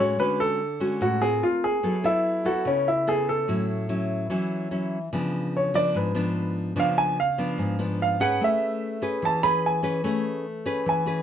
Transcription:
Already playing: nylon-string guitar A2
0.00 nylon-string guitar G#3 C#4 F#4, grand piano C#5
0.19 nylon-string guitar D3 G#3 C#4 F#4, grand piano B4
0.40 grand piano A4
0.80 nylon-string guitar G#3 C#4 F#4
1.01 nylon-string guitar A2, grand piano F#4
1.21 nylon-string guitar C4 F4 A#4, grand piano G#4
1.43 grand piano F4
1.64 grand piano G#4
1.83 nylon-string guitar F#3 B3 E4 A4
2.04 nylon-string guitar B3 E4 A4, grand piano E4
2.45 nylon-string guitar B3 E4 A4, grand piano F#4
2.65 nylon-string guitar C#3, grand piano C#4
2.88 grand piano E4
3.07 nylon-string guitar B3 E4 A4, grand piano G#4
3.29 grand piano A4
3.48 nylon-string guitar A2 F#3 C#4 E4
3.89 nylon-string guitar F#3 C#4 E4
4.30 nylon-string guitar E3 F#3 C#4 E4
4.71 nylon-string guitar F#3 C#4 E4
5.13 nylon-string guitar C#3 F3 B3 D4
5.57 grand piano C#5
5.74 nylon-string guitar F3 B3 D4, grand piano D5
5.94 nylon-string guitar G#2, grand piano B4
6.15 nylon-string guitar F3 B3 D4
6.76 nylon-string guitar C#3 F3 B3 D4, grand piano F5
6.98 grand piano G#5
7.20 grand piano F5
7.38 nylon-string guitar F3 B3 D4
7.58 nylon-string guitar G#2
7.79 nylon-string guitar F3 B3 D4
8.02 grand piano F5
8.20 nylon-string guitar C#4 G#4 B4, grand piano F#5
8.41 nylon-string guitar A3, grand piano E5
9.02 nylon-string guitar C#4 G#4 B4
9.22 nylon-string guitar E3, grand piano A5
9.43 nylon-string guitar C#4 G#4 B4, grand piano B5
9.66 grand piano G#5
9.83 nylon-string guitar C#4 G#4 B4
10.04 nylon-string guitar A3 C#4 G#4 B4
10.65 nylon-string guitar C#4 G#4 B4
10.86 nylon-string guitar E3, grand piano G#5
11.06 nylon-string guitar C#4 G#4 B4

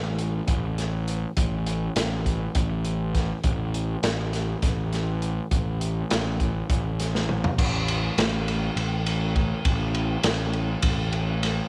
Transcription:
Already playing: picked electric bass A1
0.19 closed hi-hat
0.48 picked electric bass A1, kick, closed hi-hat
0.78 snare, closed hi-hat
1.08 closed hi-hat
1.37 picked electric bass A1, kick, closed hi-hat
1.66 closed hi-hat
1.96 picked electric bass A1, snare, closed hi-hat
2.26 kick, closed hi-hat
2.55 picked electric bass A1, kick, closed hi-hat
2.85 closed hi-hat
3.15 kick, snare, closed hi-hat
3.44 picked electric bass A1, kick, closed hi-hat
3.74 closed hi-hat
4.03 picked electric bass A1, snare, closed hi-hat
4.33 snare, closed hi-hat
4.62 picked electric bass A1, kick, snare, closed hi-hat
4.93 snare, closed hi-hat
5.22 closed hi-hat
5.51 picked electric bass A1, kick, closed hi-hat
5.81 closed hi-hat
6.11 picked electric bass A1, snare, closed hi-hat
6.40 kick, closed hi-hat
6.70 picked electric bass A1, kick, closed hi-hat
7.00 snare, closed hi-hat
7.15 snare
7.29 mid tom
7.44 floor tom
7.58 picked electric bass A1, kick, crash
7.88 ride
8.18 picked electric bass A1, snare, ride
8.48 ride
8.76 picked electric bass A1, ride
9.06 ride
9.36 kick, ride
9.65 picked electric bass A1, kick, ride
9.95 ride
10.23 picked electric bass A1, snare, ride
10.53 ride
10.82 picked electric bass A1, kick, ride
11.12 ride
11.43 snare, ride

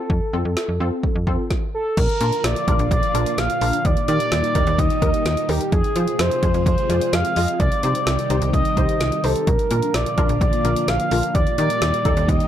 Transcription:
Already playing: analog synth lead A4
0.10 fm bass F2, kick
0.33 fm bass F2, synth pluck C4 F4 A4
0.45 fm bass F2
0.57 snare
0.69 fm bass F2
0.80 fm bass F2, synth pluck C4 F4 A4
1.03 kick
1.15 fm bass F2
1.27 fm bass F2, synth pluck C4 F4 A4, kick
1.51 kick, snare
1.74 analog synth lead A4
1.97 fm bass A#1, string machine A#2 D3 F3 D4 F4, analog synth lead A#4, kick, closed hi-hat, crash
2.09 closed hi-hat
2.21 fm bass A#2, synth pluck D4 F4 A#4, closed hi-hat
2.32 closed hi-hat
2.44 fm bass A#1, analog synth lead D5, snare, closed hi-hat
2.56 closed hi-hat
2.68 fm bass A#1, synth pluck D4 F4 A#4, kick, closed hi-hat
2.79 fm bass A#1, closed hi-hat
2.91 fm bass A#1, analog synth lead D5, kick, closed hi-hat
3.03 closed hi-hat
3.14 fm bass A#1, synth pluck D4 F4 A#4, closed hi-hat
3.26 closed hi-hat
3.38 fm bass A#1, analog synth lead F5, snare, closed hi-hat
3.50 closed hi-hat
3.61 fm bass A#1, synth pluck D4 F4 A#4, open hi-hat
3.73 closed hi-hat
3.85 fm bass D#2, string machine D#3 G3 D#4 G4, analog synth lead D5, kick, closed hi-hat
3.97 closed hi-hat
4.08 fm bass D#3, synth pluck D#4 G4 A#4, analog synth lead D5, closed hi-hat
4.20 closed hi-hat
4.32 fm bass D#2, snare, closed hi-hat
4.44 closed hi-hat
4.55 fm bass D#2, synth pluck D#4 G4 A#4, kick, closed hi-hat
4.67 fm bass D#2, closed hi-hat
4.78 fm bass D#2, analog synth lead D#5, kick, closed hi-hat
4.90 closed hi-hat
5.02 fm bass D#2, synth pluck D#4 G4 A#4, kick, closed hi-hat
5.14 closed hi-hat
5.25 fm bass D#2, snare, closed hi-hat
5.37 closed hi-hat
5.49 fm bass D#2, synth pluck D#4 G4 A#4, analog synth lead G4, open hi-hat
5.61 closed hi-hat
5.72 fm bass F2, string machine C3 F3 G#3 F4 G#4, analog synth lead G#4, kick, closed hi-hat
5.84 closed hi-hat
5.96 fm bass F3, synth pluck F4 G#4 C5, closed hi-hat
6.08 closed hi-hat
6.19 fm bass F2, analog synth lead C5, snare, closed hi-hat
6.31 closed hi-hat
6.43 fm bass F2, synth pluck F4 G#4 C5, kick, closed hi-hat
6.54 fm bass F2, closed hi-hat
6.66 fm bass F2, analog synth lead C5, kick, closed hi-hat
6.78 closed hi-hat
6.89 fm bass F2, synth pluck F4 G#4 D5, closed hi-hat
7.01 closed hi-hat
7.13 fm bass F2, analog synth lead F5, snare, closed hi-hat
7.25 closed hi-hat
7.36 fm bass F2, synth pluck F4 G#4 D#5, open hi-hat
7.48 closed hi-hat
7.60 fm bass C2, string machine D#3 G3 D#4 G4, analog synth lead D5, kick, closed hi-hat
7.72 closed hi-hat
7.83 fm bass C3, synth pluck D#4 G4 C5, analog synth lead D5, closed hi-hat
7.95 closed hi-hat
8.07 fm bass C2, snare, closed hi-hat
8.19 closed hi-hat
8.30 fm bass C2, synth pluck D#4 G4 C5, closed hi-hat
8.42 fm bass C2, closed hi-hat
8.53 fm bass C2, analog synth lead D#5, kick, closed hi-hat
8.65 closed hi-hat
8.77 fm bass C2, synth pluck D#4 G4 C5, kick, closed hi-hat
8.89 closed hi-hat
9.00 fm bass C2, snare, closed hi-hat
9.12 closed hi-hat
9.24 fm bass C2, synth pluck D#4 G4 C5, analog synth lead A4, open hi-hat
9.36 closed hi-hat
9.47 fm bass A#1, string machine A#2 D3 F3 D4 F4, analog synth lead A#4, kick, closed hi-hat
9.59 closed hi-hat
9.71 fm bass A#2, synth pluck D4 F4 A#4, closed hi-hat
9.82 closed hi-hat
9.94 fm bass A#1, analog synth lead D5, snare, closed hi-hat
10.06 closed hi-hat
10.18 fm bass A#1, synth pluck D4 F4 A#4, kick, closed hi-hat
10.29 fm bass A#1, closed hi-hat
10.41 fm bass A#1, analog synth lead D5, kick, closed hi-hat
10.53 closed hi-hat
10.65 fm bass A#1, synth pluck D4 F4 A#4, closed hi-hat
10.76 closed hi-hat
10.88 fm bass A#1, analog synth lead F5, snare, closed hi-hat
11.00 closed hi-hat
11.11 fm bass A#1, synth pluck D4 F4 A#4, open hi-hat
11.23 closed hi-hat
11.35 fm bass D#2, string machine D#3 G3 D#4 G4, analog synth lead D5, kick, closed hi-hat
11.47 closed hi-hat
11.58 fm bass D#3, synth pluck D#4 G4 A#4, analog synth lead D5, closed hi-hat
11.70 closed hi-hat
11.82 fm bass D#2, snare, closed hi-hat
11.94 closed hi-hat
12.05 fm bass D#2, synth pluck D#4 G4 A4, kick, closed hi-hat
12.17 fm bass D#2, closed hi-hat
12.28 fm bass D#2, analog synth lead D#5, kick, closed hi-hat
12.40 closed hi-hat

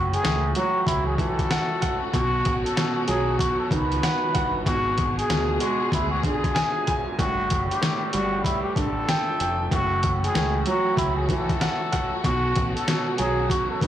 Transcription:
Already playing: fingered electric bass F#1, upright piano A2, string section E3 A3 C#4 F#4
0.13 muted trumpet G#4, closed hi-hat
0.23 fingered electric bass C#2, upright piano A2, snare, closed hi-hat
0.55 upright piano F#3, muted trumpet F#4, closed hi-hat
0.87 fingered electric bass C#2, muted trumpet E4, kick, closed hi-hat
1.06 muted trumpet G#4
1.18 upright piano E3, muted trumpet A4, kick, closed hi-hat
1.39 kick, closed hi-hat
1.51 upright piano F#5, snare, closed hi-hat
1.81 upright piano F#5, kick, closed hi-hat
2.13 fingered electric bass B1, upright piano B2, string section D#3 B3, muted trumpet F#4, kick, closed hi-hat
2.45 fingered electric bass A1, kick, closed hi-hat
2.64 muted trumpet A4, closed hi-hat
2.76 upright piano B2, snare, closed hi-hat
3.07 fingered electric bass B1, upright piano F#3, muted trumpet G#4, closed hi-hat
3.39 muted trumpet F#4, kick, closed hi-hat
3.60 muted trumpet A4
3.71 fingered electric bass C#2, upright piano D#3, muted trumpet B4, kick, closed hi-hat
3.92 closed hi-hat
4.03 upright piano F#5, snare, closed hi-hat
4.34 fingered electric bass G1, upright piano F#5, kick, closed hi-hat
4.66 fingered electric bass G#1, upright piano B2, string section D3 G#3 G#4, muted trumpet F#4, kick, closed hi-hat
4.98 kick, closed hi-hat
5.19 muted trumpet G#4, closed hi-hat
5.29 fingered electric bass D2, upright piano B2, snare, closed hi-hat
5.60 upright piano G#3, muted trumpet F#4, closed hi-hat
5.92 fingered electric bass D2, muted trumpet E4, kick, closed hi-hat
6.12 muted trumpet F#4
6.23 upright piano D3, muted trumpet G#4, kick, closed hi-hat
6.44 kick, closed hi-hat
6.55 upright piano G#5, snare, closed hi-hat
6.87 upright piano G#5, kick, closed hi-hat
7.19 fingered electric bass G1, upright piano A2, string section G3 A3 B3, muted trumpet F#4, kick, closed hi-hat
7.50 fingered electric bass F#1, kick, closed hi-hat
7.71 muted trumpet G4, closed hi-hat
7.81 upright piano A2, snare, closed hi-hat
8.13 fingered electric bass G1, upright piano G3, muted trumpet F#4, closed hi-hat
8.45 muted trumpet E4, kick, closed hi-hat
8.63 muted trumpet G4
8.76 fingered electric bass A1, upright piano D3, muted trumpet A4, kick, closed hi-hat
9.09 upright piano G5, snare, closed hi-hat
9.40 fingered electric bass F1, upright piano G5, closed hi-hat
9.71 fingered electric bass F#1, upright piano A2, string section E3 A3 C#4 F#4, muted trumpet F#4, kick, closed hi-hat
10.03 kick, closed hi-hat
10.24 muted trumpet G#4, closed hi-hat
10.34 fingered electric bass C#2, upright piano A2, snare, closed hi-hat
10.66 upright piano F#3, muted trumpet F#4, closed hi-hat
10.97 fingered electric bass C#2, muted trumpet E4, kick, closed hi-hat
11.17 muted trumpet G#4
11.28 upright piano E3, muted trumpet A4, kick, closed hi-hat
11.49 kick, closed hi-hat
11.61 upright piano F#5, snare, closed hi-hat
11.92 upright piano F#5, kick, closed hi-hat
12.23 fingered electric bass B1, upright piano B2, string section D#3 B3, muted trumpet F#4, kick, closed hi-hat
12.56 fingered electric bass A1, kick, closed hi-hat
12.75 muted trumpet A4, closed hi-hat
12.87 upright piano B2, snare, closed hi-hat
13.18 fingered electric bass B1, upright piano F#3, muted trumpet G#4, closed hi-hat
13.50 muted trumpet F#4, kick, closed hi-hat
13.71 muted trumpet A4
13.81 fingered electric bass C#2, upright piano D#3, muted trumpet B4, kick, closed hi-hat

